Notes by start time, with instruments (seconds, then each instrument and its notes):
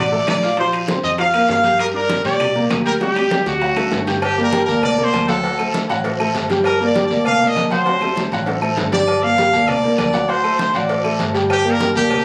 Already playing: upright bass A1
0.00 trumpet D5
0.12 grand piano A3 A4 A5, high conga
0.27 upright bass A#1, trumpet D5, high bongo, low bongo, high conga, high timbale, low timbale, short guiro, claves
0.43 grand piano F4 F5 F6, high timbale, short guiro
0.57 grand piano F3 F4 F5, trumpet C5, high bongo, high conga, long guiro
0.73 high bongo, high conga, high timbale, claves
0.88 grand piano C4 C5 C6, high bongo, high conga, high timbale, low timbale, short guiro
1.03 upright bass F2, trumpet D#5, high bongo, short guiro
1.18 grand piano F3 F4 F5, trumpet F5, high bongo, high conga, high timbale, long guiro
1.34 grand piano A#3 A#4 A#5, high conga, high timbale, claves
1.49 upright bass G2, trumpet F5, high bongo, low bongo, high conga, low timbale, short guiro
1.63 grand piano G4 G5 G6, high bongo, high conga, high timbale, short guiro
1.79 trumpet A#4, high bongo, high conga, high timbale, long guiro, claves
1.94 grand piano D4 D5 D6, trumpet A#4, high conga
2.09 high bongo, high conga, high timbale, low timbale, short guiro
2.24 upright bass A#2, grand piano G4 G5 G6, trumpet D5, high conga, high timbale, short guiro
2.40 high bongo, high conga, low conga, high timbale, long guiro, claves
2.55 grand piano A#3 A#4 A#5, high conga, low conga
2.70 upright bass D2, high bongo, low bongo, high conga, high timbale, low timbale, short guiro, claves
2.85 grand piano G4 G5 G6, trumpet A#4, high timbale, short guiro
3.01 grand piano G3 G4 G5, trumpet G4, high bongo, high conga, long guiro
3.16 high bongo, high conga, high timbale, claves
3.31 grand piano G4 G5 G6, high bongo, high conga, high timbale, low timbale, short guiro
3.46 upright bass D2, trumpet F#4, high bongo, short guiro
3.61 grand piano F#3 F#4 F#5, high conga, high timbale, long guiro
3.76 grand piano A3 A4 A5, low bongo, high conga, high timbale, claves
3.92 upright bass G1, low bongo, high conga, low timbale, short guiro
4.07 grand piano G4 G5 G6, low bongo, high timbale, short guiro
4.22 trumpet G4, cowbell, high conga, low agogo, long guiro, claves
4.38 grand piano A#3 A#4 D5, high conga
4.43 trumpet A#4
4.52 grand piano G3 G4 G5, cowbell, high conga, low timbale, low agogo, short guiro
4.65 upright bass D2, grand piano A#3 A#4 D5, trumpet A#4, high conga, low agogo, short guiro
4.83 trumpet D5, cowbell, high conga, low conga, low agogo, long guiro, claves
4.98 grand piano A#3 A#4 D5, high conga, low conga
5.04 trumpet C5
5.13 upright bass D2, cowbell, high conga, low timbale, low agogo, short guiro, claves
5.28 grand piano F#3 F#4 F#5, trumpet A4, cowbell, high conga, short guiro
5.43 grand piano F#3 F#4 F#5, cowbell, high conga, low agogo, long guiro
5.59 grand piano A3 A4 C5, high conga, low agogo, claves
5.74 cowbell, high conga, low timbale, short guiro
5.89 upright bass A1, grand piano F#3 F#4 F#5, low agogo, short guiro
6.04 grand piano A3 A4 C5, cowbell, high conga, low agogo, long guiro
6.20 grand piano A3 A4 C5, high conga, low agogo, claves
6.34 upright bass G1, cowbell, high conga, low timbale, low agogo, short guiro
6.50 grand piano G3 G4 G5, cowbell, high conga, short guiro
6.64 trumpet A#4, cowbell, high conga, low agogo, long guiro, claves
6.80 grand piano A#3 A#4 D5, high conga
6.86 trumpet D5
6.95 grand piano G3 G4 G5, cowbell, high conga, low timbale, low agogo, short guiro
7.06 upright bass D2, trumpet D5
7.10 grand piano A#3 A#4 D5, high conga, low agogo, short guiro
7.25 trumpet F5, cowbell, high conga, low conga, low agogo, long guiro, claves
7.41 grand piano A#3 A#4 D5, high conga, low conga
7.48 trumpet D#5
7.55 upright bass D2, cowbell, high conga, low timbale, low agogo, short guiro, claves
7.70 grand piano F#3 F#4 F#5, trumpet C5, cowbell, high conga, short guiro
7.86 grand piano F#3 F#4 F#5, cowbell, high bongo, high conga, low agogo, long guiro
8.01 grand piano A3 A4 C5, high bongo, high conga, low agogo, claves
8.16 cowbell, high bongo, high conga, low timbale, short guiro
8.32 upright bass A1, grand piano F#3 F#4 F#5, low agogo, short guiro
8.46 grand piano A3 A4 C5, cowbell, low bongo, high conga, low agogo, long guiro
8.62 grand piano A3 A4 C5, high conga, low agogo, claves
8.77 upright bass G1, cowbell, low bongo, high conga, low timbale, low agogo, short guiro
8.92 grand piano G3 G4 G5, trumpet D5, cowbell, low bongo, high conga, short guiro
9.07 cowbell, high conga, low agogo, long guiro, claves
9.22 grand piano A#3 A#4 D5, trumpet F5, high conga
9.38 grand piano G3 G4 G5, cowbell, high conga, low timbale, low agogo, short guiro
9.53 upright bass D2, grand piano A#3 A#4 D5, high conga, low agogo, short guiro
9.68 trumpet D5, cowbell, high conga, low conga, low agogo, long guiro, claves
9.84 grand piano A#3 A#4 D5, high conga, low conga
9.98 upright bass D2, trumpet D5, cowbell, high conga, low timbale, low agogo, short guiro, claves
10.13 grand piano F#3 F#4 F#5, cowbell, high conga, short guiro
10.28 grand piano F#3 F#4 F#5, trumpet C5, cowbell, high conga, low agogo, long guiro
10.44 grand piano A3 A4 C5, high conga, low agogo, claves
10.59 trumpet C5, cowbell, high conga, low timbale, short guiro
10.74 upright bass A1, grand piano F#3 F#4 F#5, trumpet D5, low agogo, short guiro
10.89 grand piano A3 A4 C5, cowbell, high conga, low agogo, long guiro
11.04 grand piano A3 A4 C5, high conga, low agogo, claves
11.19 upright bass G1, cowbell, high conga, low timbale, low agogo, short guiro
11.34 grand piano G3 G4 G5, cowbell, short guiro
11.50 trumpet G4, cowbell, high conga, low agogo, long guiro, claves
11.64 grand piano A#3 A#4 D5, high conga
11.71 trumpet A#4
11.80 grand piano G3 G4 G5, cowbell, high conga, low timbale, low agogo, short guiro
11.95 upright bass D2, grand piano A#3 A#4 D5, trumpet G4, high conga, low agogo, short guiro
12.10 cowbell, high conga, low conga, low agogo, long guiro, claves